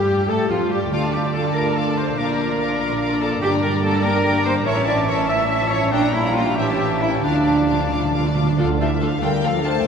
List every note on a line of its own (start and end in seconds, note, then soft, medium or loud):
0.00 0.27 G2 medium
0.00 0.27 G3 medium
0.00 0.29 G3 medium
0.00 0.27 G4 medium
0.00 0.28 G4 medium
0.00 0.29 G4 medium
0.00 0.30 G4 medium
0.27 0.50 A2 medium
0.27 0.50 A3 medium
0.27 0.51 A4 medium
0.27 0.50 A4 medium
0.27 0.51 A4 medium
0.49 0.71 F2 medium
0.49 0.59 F3 medium
0.49 0.72 F3 medium
0.49 0.71 F4 medium
0.49 0.70 F4 medium
0.49 0.73 F4 medium
0.49 0.72 F4 medium
0.70 0.92 G2 medium
0.70 0.92 G3 medium
0.70 0.93 G3 medium
0.70 0.91 G4 medium
0.70 0.92 G4 medium
0.70 0.93 G4 medium
0.70 0.92 G4 medium
0.70 0.93 G4 medium
0.70 0.78 G4 medium
0.92 2.13 D2 medium
0.92 1.51 D3 medium
0.92 2.13 A3 medium
0.92 2.13 D4 medium
0.92 1.02 F4 soft
0.92 1.01 F4 medium
0.92 1.16 F4 medium
0.92 2.13 D5 medium
0.92 1.03 F5 medium
0.92 2.13 A5 soft
0.92 1.03 D6 soft
1.03 1.13 D4 soft
1.03 1.15 D5 soft
1.03 1.14 A5 soft
1.13 1.24 F4 soft
1.13 1.22 G4 medium
1.13 1.32 G4 medium
1.13 1.25 F5 soft
1.13 1.24 D6 soft
1.24 1.34 D4 soft
1.24 1.35 D5 soft
1.24 1.35 A5 soft
1.33 1.44 F4 soft
1.33 1.43 A4 medium
1.33 1.55 A4 medium
1.33 1.45 F5 soft
1.33 1.44 D6 soft
1.44 1.55 D4 soft
1.44 1.56 D5 soft
1.44 1.55 A5 medium
1.55 1.66 F4 soft
1.55 1.76 A#4 medium
1.55 1.78 A#4 medium
1.55 1.66 F5 soft
1.55 1.65 D6 soft
1.66 1.76 D4 soft
1.66 1.76 D5 soft
1.66 1.76 A5 soft
1.75 1.85 F4 soft
1.75 1.97 A4 medium
1.75 1.99 A4 medium
1.75 1.86 F5 soft
1.75 1.86 D6 soft
1.86 1.97 D4 soft
1.86 1.97 D5 soft
1.86 1.97 A5 soft
1.96 2.07 F4 soft
1.96 2.05 C5 medium
1.96 2.19 C5 medium
1.96 2.07 F5 soft
1.96 2.08 D6 soft
2.07 2.18 D4 soft
2.07 2.18 D5 soft
2.07 2.17 A5 soft
2.16 3.40 A#1 medium
2.16 3.42 A#3 medium
2.16 3.40 D4 medium
2.16 2.28 F4 soft
2.16 3.20 A#4 medium
2.16 3.23 A#4 medium
2.16 3.39 D5 medium
2.16 2.27 F5 medium
2.16 3.19 A#5 medium
2.16 2.27 D6 medium
2.28 2.39 D4 soft
2.28 2.38 D5 soft
2.28 2.39 A#5 soft
2.39 2.49 F4 soft
2.39 2.49 F5 soft
2.39 2.49 D6 soft
2.49 2.60 D4 soft
2.49 2.60 D5 soft
2.49 2.59 A#5 soft
2.59 2.69 F4 soft
2.59 2.69 F5 soft
2.59 2.70 D6 soft
2.70 2.80 D4 soft
2.70 2.81 D5 soft
2.70 2.80 A#5 soft
2.80 2.91 F4 soft
2.80 2.91 F5 medium
2.80 2.91 D6 medium
2.90 3.01 D4 soft
2.90 3.01 D5 medium
2.90 3.01 A#5 medium
3.01 3.11 F4 soft
3.01 3.11 F5 soft
3.01 3.11 D6 medium
3.12 3.22 D4 soft
3.12 3.22 D5 soft
3.12 3.22 A#5 medium
3.21 3.32 F4 medium
3.21 3.41 A4 medium
3.21 3.30 A4 medium
3.21 3.32 F5 soft
3.21 3.33 D6 medium
3.32 3.43 D4 soft
3.32 3.42 D5 soft
3.32 3.43 A#5 soft
3.41 4.64 G1 medium
3.41 4.02 G3 medium
3.41 3.53 A#3 medium
3.41 4.02 D4 medium
3.41 3.51 G4 medium
3.41 3.51 G4 loud
3.41 4.02 D5 medium
3.41 3.52 G5 medium
3.41 4.03 A#5 medium
3.41 3.52 D6 medium
3.52 3.64 D4 medium
3.52 3.63 D5 soft
3.52 3.64 A#5 soft
3.62 3.74 A#3 soft
3.62 3.72 A#4 medium
3.62 3.83 A#4 medium
3.62 3.73 G5 medium
3.62 3.74 D6 medium
3.72 3.84 D4 medium
3.72 3.83 D5 medium
3.72 3.85 A#5 medium
3.84 3.93 A#3 medium
3.84 4.04 A4 medium
3.84 3.93 G5 medium
3.84 3.95 D6 medium
3.93 4.04 D4 soft
3.93 4.04 D5 medium
3.93 4.05 A#5 medium
4.03 4.65 G3 medium
4.03 4.14 A#3 medium
4.03 4.65 D4 medium
4.03 4.45 A#4 medium
4.03 4.45 A#4 loud
4.03 4.49 D5 medium
4.03 4.14 G5 medium
4.03 4.65 A#5 medium
4.03 4.15 D6 medium
4.15 4.25 D4 medium
4.15 4.25 D5 medium
4.15 4.26 A#5 medium
4.24 4.35 A#3 soft
4.24 4.34 G5 medium
4.24 4.35 D6 medium
4.36 4.46 D4 soft
4.36 4.46 D5 medium
4.36 4.46 A#5 medium
4.45 4.56 A#3 medium
4.45 4.53 C5 medium
4.45 4.55 C5 medium
4.45 4.56 G5 medium
4.45 4.56 D6 medium
4.56 4.67 D4 soft
4.56 4.67 D5 medium
4.56 4.67 A#5 medium
4.65 5.90 A1 medium
4.65 5.28 E3 medium
4.65 5.28 C#4 medium
4.65 4.77 E4 medium
4.65 4.87 C#5 loud
4.65 4.77 C#5 medium
4.65 5.28 E5 medium
4.65 4.76 E5 medium
4.65 5.28 A5 medium
4.65 4.76 C#6 medium
4.77 4.88 C#4 medium
4.77 4.88 C#5 medium
4.77 4.88 A5 medium
4.87 4.98 E4 soft
4.87 4.96 D5 medium
4.87 5.11 D5 medium
4.87 4.98 E5 medium
4.87 4.98 C#6 medium
4.96 5.08 C#4 medium
4.96 5.09 C#5 medium
4.96 5.09 A5 medium
5.08 5.18 E4 medium
5.08 5.16 C#5 medium
5.08 5.29 C#5 medium
5.08 5.18 E5 medium
5.08 5.19 C#6 medium
5.19 5.30 C#4 medium
5.19 5.30 C#5 medium
5.19 5.30 A5 medium
5.29 5.60 E3 medium
5.29 5.91 C#4 medium
5.29 5.41 E4 medium
5.29 5.91 E5 medium
5.29 5.70 E5 loud
5.29 5.71 E5 medium
5.29 5.41 E5 medium
5.29 5.91 A5 medium
5.29 5.41 C#6 medium
5.40 5.51 C#4 soft
5.40 5.51 C#5 medium
5.40 5.51 A5 medium
5.50 5.61 E4 medium
5.50 5.61 E5 medium
5.50 5.60 C#6 medium
5.62 5.93 F3 medium
5.62 5.72 C#4 soft
5.62 5.72 C#5 medium
5.62 5.72 A5 medium
5.70 5.83 E4 medium
5.70 5.94 C#5 medium
5.70 5.93 C#5 medium
5.70 5.83 E5 medium
5.70 5.82 C#6 medium
5.82 5.93 C#4 medium
5.82 5.93 C#5 medium
5.82 5.93 A5 soft
5.92 6.56 A#1 medium
5.92 6.57 G3 medium
5.92 6.03 A#3 medium
5.92 6.14 D4 medium
5.92 6.57 D4 medium
5.92 6.14 D4 loud
5.92 6.02 G5 medium
5.92 6.07 G5 medium
5.92 6.03 A#5 medium
5.92 6.53 A#5 medium
6.02 6.14 D4 medium
6.02 6.14 G5 medium
6.02 6.13 A#5 soft
6.13 6.24 A#3 soft
6.13 6.36 E4 medium
6.13 6.35 E4 medium
6.13 6.25 G5 medium
6.13 6.25 A#5 medium
6.23 6.35 D4 medium
6.23 6.55 F5 medium
6.23 6.35 G5 medium
6.23 6.35 A#5 medium
6.34 6.45 A#3 medium
6.34 6.57 F4 medium
6.34 6.46 G5 medium
6.34 6.45 A#5 medium
6.45 6.56 D4 medium
6.45 6.55 G5 medium
6.45 6.58 A#5 soft
6.55 7.24 A1 medium
6.55 7.24 E3 medium
6.55 7.24 C#4 medium
6.55 6.66 E4 medium
6.55 7.03 G4 medium
6.55 7.00 G4 medium
6.55 7.22 E5 medium
6.55 6.68 E5 medium
6.55 6.67 G5 medium
6.55 7.23 A5 medium
6.66 6.78 C#4 medium
6.66 6.79 C#5 medium
6.66 6.79 A5 medium
6.77 6.89 E4 soft
6.77 6.91 E5 medium
6.77 6.91 G5 soft
6.89 7.01 C#4 soft
6.89 7.02 C#5 medium
6.89 7.01 A5 medium
7.00 7.11 E4 medium
7.00 7.23 E4 medium
7.00 7.10 E4 medium
7.00 7.12 E5 medium
7.00 7.12 G5 medium
7.11 7.23 C#4 soft
7.11 7.24 C#5 soft
7.11 7.24 A5 soft
7.22 8.36 D2 medium
7.22 8.34 F3 medium
7.22 8.36 D4 medium
7.22 7.90 D4 medium
7.22 7.34 F4 soft
7.22 8.34 F5 medium
7.22 7.34 F5 medium
7.22 8.34 A5 medium
7.22 7.35 D6 medium
7.34 7.46 D4 medium
7.34 7.47 D5 soft
7.34 7.47 A5 soft
7.46 7.55 D3 soft
7.46 7.58 F4 soft
7.46 7.58 F5 medium
7.46 7.58 D6 soft
7.58 7.69 D4 medium
7.58 7.69 D5 medium
7.58 7.69 A5 soft
7.64 7.71 D3 soft
7.64 7.79 F5 medium
7.64 7.79 D6 medium
7.69 7.78 D3 soft
7.69 7.80 F4 soft
7.79 7.87 D3 medium
7.79 7.91 D4 soft
7.79 7.91 D5 soft
7.79 7.92 A5 soft
7.88 7.94 D3 medium
7.88 8.03 F4 soft
7.88 8.02 F5 medium
7.92 8.02 D3 medium
7.92 8.03 D6 medium
8.02 8.10 D3 medium
8.02 8.14 D4 soft
8.02 8.14 D5 soft
8.02 8.14 A5 soft
8.11 8.18 D3 medium
8.11 8.25 F4 soft
8.11 8.24 F5 medium
8.11 8.25 D6 soft
8.19 8.26 D3 medium
8.24 8.34 D3 medium
8.24 8.37 D4 soft
8.24 8.36 D5 medium
8.24 8.37 A5 soft
8.35 8.42 D3 medium
8.35 8.48 F4 medium
8.35 8.48 F5 soft
8.35 8.48 D6 soft
8.43 8.50 D3 medium
8.47 8.58 D3 medium
8.47 8.57 D4 soft
8.47 8.58 D5 soft
8.47 8.59 A5 soft
8.58 9.15 D2 medium
8.58 8.79 D3 medium
8.58 9.19 D3 medium
8.58 9.15 D3 medium
8.58 8.67 A3 medium
8.58 8.66 D4 medium
8.58 8.79 F4 medium
8.58 8.67 F4 medium
8.58 8.68 A4 medium
8.58 8.67 A4 medium
8.58 8.68 D5 medium
8.58 8.69 F5 medium
8.80 9.02 E3 medium
8.80 8.88 A3 medium
8.80 8.88 D4 soft
8.80 8.89 F4 medium
8.80 8.86 G4 medium
8.80 8.89 A4 medium
8.80 9.02 E5 medium
8.80 8.91 F5 medium
9.01 9.11 F3 medium
9.01 9.09 A3 medium
9.01 9.09 D4 soft
9.01 9.09 F4 medium
9.01 9.09 A4 medium
9.01 9.11 A4 soft
9.01 9.08 A4 medium
9.01 9.11 F5 soft
9.01 9.23 F5 medium
9.21 9.78 D2 medium
9.21 9.78 D3 medium
9.21 9.43 G3 medium
9.21 9.29 A3 medium
9.21 9.30 D4 medium
9.21 9.30 F4 medium
9.21 9.30 A4 medium
9.21 9.33 A4 medium
9.21 9.44 A#4 medium
9.21 9.33 F5 medium
9.21 9.44 G5 medium
9.43 9.65 F3 medium
9.43 9.52 A3 medium
9.43 9.51 D4 medium
9.43 9.52 F4 medium
9.43 9.51 A4 medium
9.43 9.54 A4 medium
9.43 9.65 A4 medium
9.43 9.54 F5 soft
9.43 9.65 F5 medium
9.64 9.72 A3 soft
9.64 9.85 A3 medium
9.64 9.72 D4 medium
9.64 9.72 F4 medium
9.64 9.72 A4 soft
9.64 9.75 A4 medium
9.64 9.87 C5 medium
9.64 9.75 F5 medium
9.64 9.86 A5 medium